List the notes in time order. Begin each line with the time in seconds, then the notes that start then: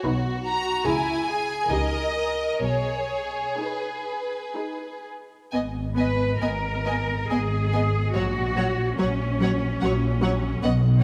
Already playing: F#4
0.05 B1 B2 D#4 B4
0.46 A#5
0.86 C#2 C#3 E4 G#4 G#5
1.28 G#4
1.70 C#2 C#3 D#4 G4 A#4 D#5
2.16 A#4
2.61 B1 B2 G#4 C#5
3.58 D#4 G#4 B4
4.56 D#4 G#4
5.52 G#1 B3 D#5 G#5
5.96 B3 B4 D#5 G#5
6.41 G#1 B3 A#4 D#5 G#5
6.85 B3 D#5 G#5
7.30 G#1 B3 G#4 D#5 G#5
7.73 B3 D#5 G#5
8.14 A#1 F#3 F#4 C#5 F#5
8.57 F#3 C#5 F#5
8.97 A#1 F#3 C#4 C#5 F#5
9.41 F#3 C#5 F#5
9.80 A#1 F#3 C#5 F#5
10.22 F#3 C#5 F#5
10.61 B1 B3 D#5 F#5